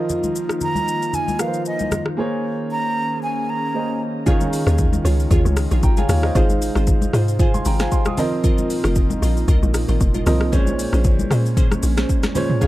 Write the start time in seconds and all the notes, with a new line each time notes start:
Already playing: D#3 F3 A#3 D#4 F4 A#4 D#5
0.09 low conga, shaker
0.23 high conga, shaker
0.36 shaker
0.49 cross-stick, shaker
0.61 A#5, low conga, shaker
0.75 high conga, shaker
0.88 shaker
1.02 shaker
1.13 G#5, low conga, shaker
1.28 high conga, shaker
1.39 F3 F4 A#4 B4 F5, cross-stick, shaker
1.47 C5
1.54 shaker
1.65 D#5, shaker
1.79 high conga, shaker
1.91 cross-stick, high conga, low conga, shaker
2.06 cross-stick
2.17 A#3 C#4 G#4 C5 C#5
2.71 A#5
3.23 G#5
3.50 A#5
3.74 A#3 G#4 C5 D#5
4.26 C#3 D#3 G#3 C#4 D#4 F4 G#4 C#5 F5, kick, low conga, shaker
4.41 high conga, shaker
4.53 open hi-hat, shaker
4.67 D#2 F4 G#4 C#5, cross-stick, shaker
4.78 kick, low conga, shaker
4.93 high conga, shaker
5.04 C#2 F4 G#4 C#5, open hi-hat, shaker
5.20 shaker
5.31 D#2 F4 G#4 C#5, kick, low conga, shaker
5.45 C#2, high conga, shaker
5.57 cross-stick, open hi-hat, shaker
5.71 A#1 F4 G#4 C#5, shaker
5.83 G#1 G5 A#5, kick, shaker
5.97 F4 G#4 C#5 F5 G#5, high conga, shaker
6.09 D#2 C#5 F5, cross-stick, open hi-hat, high conga, low conga, shaker
6.23 C5 D#5, cross-stick
6.35 G#1 C3 G#3 D#4 F4 G#4 C5 F5, kick, low conga, shaker
6.49 high conga, shaker
6.62 open hi-hat, shaker
6.75 G#1 F4 G#4 C5, cross-stick, shaker
6.87 kick, low conga, shaker
7.02 high conga, shaker
7.13 G#2 F4 G#4 C5, cross-stick, open hi-hat, shaker
7.28 shaker
7.39 F4 G#4 C5 F5 G#5, kick, low conga, shaker
7.54 G#5 C6, high conga, shaker
7.65 G#1 G5 A#5, open hi-hat, shaker
7.79 F4 G#4 C5 F5 G#5, cross-stick, snare, shaker
7.91 G#5 C6, kick, shaker
8.05 C6 D#6, cross-stick, high conga, shaker
8.17 A#2 F3 A#3 C4 D#4 F4 A#4 D#5, open hi-hat, high conga, low conga, shaker
8.44 F4 A#4 D#5, kick, low conga, shaker
8.58 high conga, shaker
8.70 open hi-hat, shaker
8.84 F1 F4 A#4 D#5, cross-stick, shaker
8.95 kick, low conga, shaker
9.10 high conga, shaker
9.22 A#1 F4 A#4 D#5, open hi-hat, shaker
9.37 shaker
9.48 C2 F4 A#4 D#5, kick, low conga, shaker
9.63 A#1, high conga, shaker
9.74 cross-stick, open hi-hat, shaker
9.88 G#1 F4 A#4 D#5, shaker
10.00 F1, kick, shaker
10.14 F4 A#4 D#5, high conga, shaker
10.26 C2 F3 C4 A#4 D#5, cross-stick, open hi-hat, high conga, low conga, shaker
10.41 cross-stick
10.52 A#1 A#2 G#3 C#4 G#4 C5 C#5, kick, low conga, shaker
10.67 high conga, shaker
10.79 open hi-hat, shaker
10.93 A#1 C#4 G#4 C5, cross-stick, shaker
11.04 kick, low conga, shaker
11.19 high conga, shaker
11.31 A#2 C#4 G#4 C5, cross-stick, open hi-hat, shaker
11.46 shaker
11.57 C#4 G#4 C5, kick, low conga, shaker
11.72 cross-stick, high conga, shaker
11.83 A#1, open hi-hat, shaker
11.97 C#4 G#4 C5, cross-stick, snare, shaker
12.09 kick, shaker
12.23 cross-stick, snare, high conga, shaker
12.35 A#2 G#3 C#4 G#4 C5 C#5, open hi-hat, high conga, low conga, shaker
12.50 mid tom
12.61 C#3 D#3 F3 C#4 D#4 F4 G#4 C#5 F5, kick, low conga, shaker